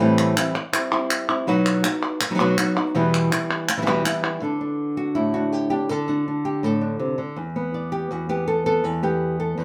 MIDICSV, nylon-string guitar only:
0, 0, Header, 1, 3, 480
1, 0, Start_track
1, 0, Time_signature, 4, 2, 24, 8
1, 0, Key_signature, 1, "minor"
1, 0, Tempo, 368550
1, 12560, End_track
2, 0, Start_track
2, 0, Title_t, "Nylon-string guitar"
2, 0, Program_c, 0, 24
2, 0, Note_on_c, 0, 45, 84
2, 0, Note_on_c, 0, 52, 83
2, 0, Note_on_c, 0, 55, 89
2, 1, Note_on_c, 0, 60, 99
2, 7, Note_on_c, 0, 64, 96
2, 453, Note_off_c, 0, 52, 0
2, 459, Note_off_c, 0, 55, 0
2, 462, Note_off_c, 0, 45, 0
2, 468, Note_on_c, 0, 52, 51
2, 470, Note_off_c, 0, 60, 0
2, 473, Note_off_c, 0, 64, 0
2, 474, Note_on_c, 0, 55, 58
2, 483, Note_on_c, 0, 60, 66
2, 486, Note_on_c, 0, 64, 73
2, 701, Note_off_c, 0, 55, 0
2, 703, Note_off_c, 0, 52, 0
2, 708, Note_off_c, 0, 64, 0
2, 711, Note_off_c, 0, 60, 0
2, 947, Note_on_c, 0, 64, 56
2, 962, Note_on_c, 0, 60, 52
2, 969, Note_on_c, 0, 55, 41
2, 1176, Note_off_c, 0, 64, 0
2, 1190, Note_off_c, 0, 60, 0
2, 1192, Note_on_c, 0, 64, 55
2, 1194, Note_off_c, 0, 55, 0
2, 1208, Note_on_c, 0, 60, 53
2, 1216, Note_on_c, 0, 55, 44
2, 1659, Note_off_c, 0, 64, 0
2, 1673, Note_off_c, 0, 60, 0
2, 1674, Note_on_c, 0, 64, 53
2, 1677, Note_off_c, 0, 55, 0
2, 1687, Note_on_c, 0, 60, 50
2, 1696, Note_on_c, 0, 55, 45
2, 1907, Note_off_c, 0, 64, 0
2, 1913, Note_off_c, 0, 60, 0
2, 1916, Note_on_c, 0, 47, 86
2, 1918, Note_off_c, 0, 55, 0
2, 1923, Note_on_c, 0, 54, 98
2, 1925, Note_on_c, 0, 59, 96
2, 1934, Note_on_c, 0, 63, 98
2, 1936, Note_on_c, 0, 66, 115
2, 2376, Note_off_c, 0, 66, 0
2, 2384, Note_off_c, 0, 63, 0
2, 2388, Note_off_c, 0, 47, 0
2, 2391, Note_off_c, 0, 54, 0
2, 2392, Note_off_c, 0, 59, 0
2, 2392, Note_on_c, 0, 66, 61
2, 2400, Note_on_c, 0, 63, 52
2, 2414, Note_on_c, 0, 59, 50
2, 2866, Note_off_c, 0, 66, 0
2, 2868, Note_off_c, 0, 59, 0
2, 2870, Note_off_c, 0, 63, 0
2, 3003, Note_on_c, 0, 54, 61
2, 3006, Note_on_c, 0, 59, 59
2, 3010, Note_on_c, 0, 63, 57
2, 3018, Note_on_c, 0, 66, 55
2, 3043, Note_off_c, 0, 54, 0
2, 3052, Note_off_c, 0, 59, 0
2, 3053, Note_off_c, 0, 63, 0
2, 3059, Note_on_c, 0, 54, 75
2, 3060, Note_off_c, 0, 66, 0
2, 3067, Note_on_c, 0, 59, 65
2, 3069, Note_on_c, 0, 63, 74
2, 3075, Note_on_c, 0, 66, 76
2, 3110, Note_off_c, 0, 54, 0
2, 3112, Note_off_c, 0, 63, 0
2, 3114, Note_off_c, 0, 59, 0
2, 3119, Note_on_c, 0, 47, 80
2, 3120, Note_off_c, 0, 66, 0
2, 3125, Note_on_c, 0, 54, 86
2, 3127, Note_on_c, 0, 63, 90
2, 3129, Note_on_c, 0, 59, 96
2, 3135, Note_on_c, 0, 66, 96
2, 3342, Note_off_c, 0, 54, 0
2, 3344, Note_off_c, 0, 59, 0
2, 3349, Note_off_c, 0, 47, 0
2, 3354, Note_off_c, 0, 63, 0
2, 3357, Note_on_c, 0, 54, 70
2, 3358, Note_off_c, 0, 66, 0
2, 3360, Note_on_c, 0, 59, 65
2, 3371, Note_on_c, 0, 63, 73
2, 3373, Note_on_c, 0, 66, 71
2, 3581, Note_off_c, 0, 66, 0
2, 3589, Note_off_c, 0, 54, 0
2, 3590, Note_off_c, 0, 59, 0
2, 3591, Note_off_c, 0, 63, 0
2, 3597, Note_on_c, 0, 66, 55
2, 3607, Note_on_c, 0, 63, 53
2, 3617, Note_on_c, 0, 59, 51
2, 3828, Note_off_c, 0, 66, 0
2, 3834, Note_off_c, 0, 63, 0
2, 3836, Note_off_c, 0, 59, 0
2, 3837, Note_on_c, 0, 40, 82
2, 3840, Note_on_c, 0, 47, 93
2, 3845, Note_on_c, 0, 52, 101
2, 3846, Note_on_c, 0, 55, 106
2, 3851, Note_on_c, 0, 59, 88
2, 3855, Note_on_c, 0, 64, 98
2, 4296, Note_off_c, 0, 64, 0
2, 4307, Note_off_c, 0, 59, 0
2, 4309, Note_off_c, 0, 40, 0
2, 4309, Note_off_c, 0, 55, 0
2, 4310, Note_off_c, 0, 47, 0
2, 4312, Note_on_c, 0, 64, 55
2, 4313, Note_off_c, 0, 52, 0
2, 4323, Note_on_c, 0, 59, 53
2, 4325, Note_on_c, 0, 55, 50
2, 4333, Note_on_c, 0, 52, 52
2, 4787, Note_off_c, 0, 64, 0
2, 4790, Note_off_c, 0, 52, 0
2, 4792, Note_off_c, 0, 59, 0
2, 4793, Note_off_c, 0, 55, 0
2, 4917, Note_on_c, 0, 47, 55
2, 4917, Note_on_c, 0, 52, 56
2, 4920, Note_on_c, 0, 55, 61
2, 4926, Note_on_c, 0, 59, 54
2, 4930, Note_on_c, 0, 64, 59
2, 4960, Note_off_c, 0, 47, 0
2, 4965, Note_off_c, 0, 52, 0
2, 4967, Note_off_c, 0, 55, 0
2, 4970, Note_off_c, 0, 59, 0
2, 4974, Note_off_c, 0, 64, 0
2, 4976, Note_on_c, 0, 47, 69
2, 4980, Note_on_c, 0, 52, 70
2, 4982, Note_on_c, 0, 55, 74
2, 4986, Note_on_c, 0, 59, 70
2, 4990, Note_on_c, 0, 64, 73
2, 5019, Note_off_c, 0, 47, 0
2, 5024, Note_off_c, 0, 52, 0
2, 5027, Note_off_c, 0, 55, 0
2, 5031, Note_off_c, 0, 59, 0
2, 5033, Note_off_c, 0, 64, 0
2, 5034, Note_on_c, 0, 47, 87
2, 5035, Note_on_c, 0, 40, 87
2, 5040, Note_on_c, 0, 52, 83
2, 5043, Note_on_c, 0, 55, 98
2, 5047, Note_on_c, 0, 59, 88
2, 5049, Note_on_c, 0, 64, 102
2, 5249, Note_off_c, 0, 52, 0
2, 5259, Note_off_c, 0, 55, 0
2, 5265, Note_on_c, 0, 52, 56
2, 5268, Note_off_c, 0, 40, 0
2, 5268, Note_off_c, 0, 47, 0
2, 5268, Note_off_c, 0, 59, 0
2, 5271, Note_off_c, 0, 64, 0
2, 5275, Note_on_c, 0, 55, 65
2, 5283, Note_on_c, 0, 59, 77
2, 5286, Note_on_c, 0, 64, 70
2, 5496, Note_off_c, 0, 64, 0
2, 5502, Note_off_c, 0, 59, 0
2, 5503, Note_off_c, 0, 52, 0
2, 5508, Note_off_c, 0, 55, 0
2, 5512, Note_on_c, 0, 64, 57
2, 5518, Note_on_c, 0, 59, 53
2, 5527, Note_on_c, 0, 55, 53
2, 5534, Note_on_c, 0, 52, 48
2, 5747, Note_off_c, 0, 64, 0
2, 5748, Note_off_c, 0, 52, 0
2, 5750, Note_off_c, 0, 59, 0
2, 5753, Note_on_c, 0, 50, 72
2, 5754, Note_off_c, 0, 55, 0
2, 5767, Note_on_c, 0, 62, 48
2, 5777, Note_on_c, 0, 69, 53
2, 5786, Note_on_c, 0, 74, 52
2, 5996, Note_off_c, 0, 62, 0
2, 6001, Note_on_c, 0, 62, 66
2, 6470, Note_off_c, 0, 69, 0
2, 6475, Note_on_c, 0, 66, 86
2, 6702, Note_off_c, 0, 74, 0
2, 6707, Note_on_c, 0, 64, 87
2, 6721, Note_on_c, 0, 45, 70
2, 6937, Note_off_c, 0, 66, 0
2, 6952, Note_on_c, 0, 66, 85
2, 6964, Note_off_c, 0, 62, 0
2, 6970, Note_on_c, 0, 62, 61
2, 7195, Note_off_c, 0, 66, 0
2, 7195, Note_on_c, 0, 67, 95
2, 7410, Note_off_c, 0, 67, 0
2, 7426, Note_on_c, 0, 67, 98
2, 7435, Note_off_c, 0, 64, 0
2, 7441, Note_off_c, 0, 62, 0
2, 7446, Note_on_c, 0, 62, 69
2, 7676, Note_off_c, 0, 67, 0
2, 7676, Note_on_c, 0, 69, 93
2, 7678, Note_off_c, 0, 50, 0
2, 7682, Note_off_c, 0, 45, 0
2, 7691, Note_on_c, 0, 50, 78
2, 7916, Note_off_c, 0, 69, 0
2, 7916, Note_on_c, 0, 66, 101
2, 7925, Note_off_c, 0, 62, 0
2, 7930, Note_on_c, 0, 62, 67
2, 8171, Note_off_c, 0, 62, 0
2, 8176, Note_on_c, 0, 62, 48
2, 8396, Note_off_c, 0, 66, 0
2, 8401, Note_on_c, 0, 67, 86
2, 8637, Note_on_c, 0, 45, 67
2, 8651, Note_off_c, 0, 67, 0
2, 8651, Note_on_c, 0, 69, 86
2, 8869, Note_off_c, 0, 62, 0
2, 8875, Note_on_c, 0, 62, 67
2, 9105, Note_off_c, 0, 45, 0
2, 9111, Note_on_c, 0, 48, 65
2, 9335, Note_off_c, 0, 50, 0
2, 9351, Note_on_c, 0, 50, 66
2, 9356, Note_off_c, 0, 48, 0
2, 9591, Note_on_c, 0, 40, 70
2, 9596, Note_off_c, 0, 50, 0
2, 9605, Note_off_c, 0, 69, 0
2, 9630, Note_off_c, 0, 62, 0
2, 9845, Note_on_c, 0, 59, 72
2, 10084, Note_on_c, 0, 74, 52
2, 10314, Note_on_c, 0, 67, 90
2, 10554, Note_off_c, 0, 40, 0
2, 10559, Note_on_c, 0, 40, 67
2, 10568, Note_off_c, 0, 67, 0
2, 10568, Note_on_c, 0, 66, 90
2, 10784, Note_off_c, 0, 59, 0
2, 10798, Note_off_c, 0, 66, 0
2, 10799, Note_on_c, 0, 59, 66
2, 10803, Note_on_c, 0, 67, 89
2, 11033, Note_off_c, 0, 67, 0
2, 11039, Note_on_c, 0, 69, 99
2, 11262, Note_off_c, 0, 69, 0
2, 11267, Note_off_c, 0, 59, 0
2, 11280, Note_on_c, 0, 69, 102
2, 11282, Note_on_c, 0, 59, 64
2, 11491, Note_off_c, 0, 59, 0
2, 11497, Note_off_c, 0, 40, 0
2, 11513, Note_on_c, 0, 40, 83
2, 11518, Note_off_c, 0, 74, 0
2, 11518, Note_on_c, 0, 71, 96
2, 11756, Note_off_c, 0, 69, 0
2, 11758, Note_on_c, 0, 59, 70
2, 11764, Note_on_c, 0, 67, 92
2, 12234, Note_off_c, 0, 67, 0
2, 12235, Note_off_c, 0, 71, 0
2, 12239, Note_on_c, 0, 69, 84
2, 12456, Note_off_c, 0, 40, 0
2, 12471, Note_on_c, 0, 40, 69
2, 12489, Note_on_c, 0, 71, 93
2, 12560, Note_off_c, 0, 40, 0
2, 12560, Note_off_c, 0, 59, 0
2, 12560, Note_off_c, 0, 69, 0
2, 12560, Note_off_c, 0, 71, 0
2, 12560, End_track
3, 0, Start_track
3, 0, Title_t, "Muted nylon-string guitar strokes"
3, 714, Note_on_c, 9, 29, 71
3, 844, Note_off_c, 9, 29, 0
3, 2874, Note_on_c, 9, 29, 68
3, 3004, Note_off_c, 9, 29, 0
3, 4800, Note_on_c, 9, 29, 67
3, 4930, Note_off_c, 9, 29, 0
3, 12560, End_track
0, 0, End_of_file